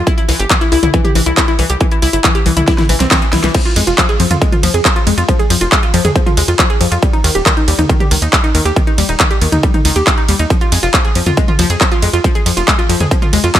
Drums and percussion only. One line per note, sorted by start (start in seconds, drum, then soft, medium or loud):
0.07 kick loud
0.07 closed hi-hat medium
0.18 closed hi-hat soft
0.29 open hi-hat loud
0.40 closed hi-hat medium
0.50 kick loud
0.50 clap loud
0.50 closed hi-hat medium
0.61 closed hi-hat soft
0.72 open hi-hat medium
0.83 closed hi-hat medium
0.83 mid tom medium
0.94 kick loud
0.94 closed hi-hat medium
1.05 closed hi-hat soft
1.05 mid tom medium
1.15 open hi-hat loud
1.26 closed hi-hat medium
1.37 kick loud
1.37 clap loud
1.37 closed hi-hat medium
1.48 closed hi-hat soft
1.59 open hi-hat medium
1.70 closed hi-hat medium
1.80 kick loud
1.80 closed hi-hat medium
1.91 closed hi-hat soft
2.02 open hi-hat loud
2.13 closed hi-hat medium
2.24 kick loud
2.24 clap loud
2.24 closed hi-hat medium
2.35 closed hi-hat soft
2.46 open hi-hat medium
2.57 closed hi-hat medium
2.57 mid tom medium
2.67 kick loud
2.67 snare medium
2.67 closed hi-hat medium
2.78 snare medium
2.78 closed hi-hat soft
2.78 mid tom medium
2.89 open hi-hat loud
3.00 snare medium
3.00 closed hi-hat medium
3.11 kick loud
3.11 snare medium
3.11 clap loud
3.11 closed hi-hat medium
3.22 closed hi-hat soft
3.33 snare loud
3.33 open hi-hat medium
3.44 snare medium
3.44 closed hi-hat medium
3.54 kick loud
3.54 closed hi-hat medium
3.54 crash medium
3.65 closed hi-hat soft
3.76 open hi-hat loud
3.76 ride medium
3.87 closed hi-hat medium
3.98 kick loud
3.98 clap loud
3.98 closed hi-hat medium
4.09 closed hi-hat soft
4.20 open hi-hat medium
4.20 ride medium
4.31 closed hi-hat medium
4.31 mid tom medium
4.42 kick loud
4.42 closed hi-hat medium
4.52 closed hi-hat soft
4.52 mid tom medium
4.63 open hi-hat loud
4.63 ride medium
4.74 closed hi-hat medium
4.85 kick loud
4.85 clap loud
4.85 closed hi-hat medium
4.96 closed hi-hat soft
5.07 open hi-hat medium
5.07 ride medium
5.18 closed hi-hat medium
5.29 kick loud
5.29 closed hi-hat medium
5.39 closed hi-hat soft
5.50 open hi-hat loud
5.50 ride medium
5.61 closed hi-hat medium
5.72 kick loud
5.72 clap loud
5.72 closed hi-hat medium
5.83 closed hi-hat soft
5.94 open hi-hat loud
5.94 ride medium
6.05 closed hi-hat medium
6.05 mid tom medium
6.16 kick loud
6.16 closed hi-hat medium
6.26 closed hi-hat soft
6.26 mid tom medium
6.37 open hi-hat loud
6.37 ride medium
6.48 closed hi-hat medium
6.59 kick loud
6.59 clap loud
6.59 closed hi-hat medium
6.70 closed hi-hat soft
6.81 open hi-hat loud
6.81 ride medium
6.92 closed hi-hat medium
7.02 kick loud
7.02 closed hi-hat medium
7.13 closed hi-hat soft
7.24 open hi-hat loud
7.24 ride medium
7.35 closed hi-hat medium
7.46 kick loud
7.46 clap loud
7.46 closed hi-hat medium
7.57 closed hi-hat soft
7.68 open hi-hat loud
7.68 ride medium
7.79 closed hi-hat medium
7.79 mid tom medium
7.89 kick loud
7.89 closed hi-hat medium
8.00 closed hi-hat soft
8.00 mid tom medium
8.11 open hi-hat loud
8.11 ride medium
8.22 closed hi-hat medium
8.33 kick loud
8.33 clap loud
8.33 closed hi-hat soft
8.44 closed hi-hat soft
8.55 open hi-hat loud
8.55 ride medium
8.66 closed hi-hat medium
8.76 kick loud
8.76 closed hi-hat medium
8.87 closed hi-hat soft
8.98 open hi-hat loud
8.98 ride medium
9.09 closed hi-hat medium
9.20 kick loud
9.20 clap loud
9.20 closed hi-hat medium
9.31 closed hi-hat soft
9.41 open hi-hat medium
9.41 ride medium
9.52 closed hi-hat soft
9.52 mid tom medium
9.63 kick loud
9.63 closed hi-hat soft
9.74 closed hi-hat soft
9.74 mid tom medium
9.85 open hi-hat loud
9.85 ride medium
9.96 closed hi-hat medium
10.07 kick loud
10.07 clap loud
10.07 closed hi-hat soft
10.18 closed hi-hat soft
10.28 open hi-hat loud
10.28 ride medium
10.39 closed hi-hat medium
10.50 kick loud
10.50 closed hi-hat medium
10.61 closed hi-hat soft
10.72 open hi-hat loud
10.72 ride medium
10.83 closed hi-hat soft
10.94 kick loud
10.94 clap loud
10.94 closed hi-hat medium
11.05 closed hi-hat soft
11.15 open hi-hat loud
11.15 ride medium
11.26 closed hi-hat medium
11.26 mid tom medium
11.37 kick loud
11.37 closed hi-hat soft
11.48 closed hi-hat soft
11.48 mid tom medium
11.59 open hi-hat loud
11.59 ride medium
11.70 closed hi-hat medium
11.81 kick loud
11.81 clap loud
11.81 closed hi-hat soft
11.92 closed hi-hat soft
12.02 open hi-hat loud
12.02 ride medium
12.13 closed hi-hat medium
12.24 kick loud
12.24 closed hi-hat medium
12.35 closed hi-hat soft
12.46 open hi-hat loud
12.46 ride medium
12.57 closed hi-hat medium
12.68 kick loud
12.68 clap loud
12.68 closed hi-hat medium
12.79 closed hi-hat soft
12.90 open hi-hat medium
12.90 ride medium
13.00 closed hi-hat medium
13.00 mid tom medium
13.11 kick loud
13.11 closed hi-hat medium
13.22 closed hi-hat soft
13.22 mid tom medium
13.33 open hi-hat loud
13.33 ride medium
13.44 closed hi-hat medium
13.55 kick loud
13.55 clap loud
13.55 closed hi-hat soft